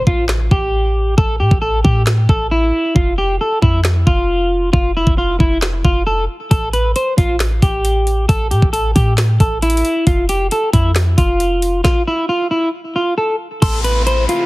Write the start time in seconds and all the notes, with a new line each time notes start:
Already playing: impact
0.07 A1 F4, kick
0.29 snare, clap
0.51 A1 G4, kick
1.18 A1 A4, kick
1.40 A2 G4
1.51 A1, kick
1.62 A4
1.84 A2 G4, kick
2.06 snare, clap
2.29 A1 A4, kick
2.51 E4
2.96 F1 F4, kick
3.18 G4
3.41 A4
3.62 F2 E4, kick
3.84 snare, clap
4.07 F1 F4, kick
4.73 F1 F4, kick
4.97 E4
5.07 F1, kick
5.18 F4
5.40 F1 E4, kick
5.62 snare, clap
5.85 F1 F4, kick
6.07 A4
6.51 A1 A4, kick, closed hi-hat
6.73 B4, closed hi-hat
6.96 C5, closed hi-hat
7.18 A1 F4, kick, closed hi-hat
7.40 snare, clap, closed hi-hat
7.62 A1 G4, kick, closed hi-hat
7.85 closed hi-hat
8.07 closed hi-hat
8.29 A1 A4, kick, closed hi-hat
8.51 A2 G4, closed hi-hat
8.62 A1, kick
8.73 A4, closed hi-hat
8.96 A2 G4, kick, closed hi-hat
9.18 snare, clap, closed hi-hat
9.40 A1 A4, kick, closed hi-hat
9.62 E4, closed hi-hat
9.70 closed hi-hat
9.77 closed hi-hat
9.85 closed hi-hat
10.07 F1 F4, kick, closed hi-hat
10.29 G4, closed hi-hat
10.51 A4, closed hi-hat
10.73 F2 E4, kick, closed hi-hat
10.95 snare, clap, closed hi-hat
11.18 F1 F4, kick, closed hi-hat
11.40 closed hi-hat
11.62 closed hi-hat
11.84 F4, kick, snare
12.07 E4
12.29 F4
12.51 E4
12.96 F4
13.18 A4
13.62 A1 C3 E3 A3 E4 A4 C6, kick, closed hi-hat, crash, downlifter
13.84 B4, closed hi-hat
14.07 C5 B5, closed hi-hat
14.29 F4, closed hi-hat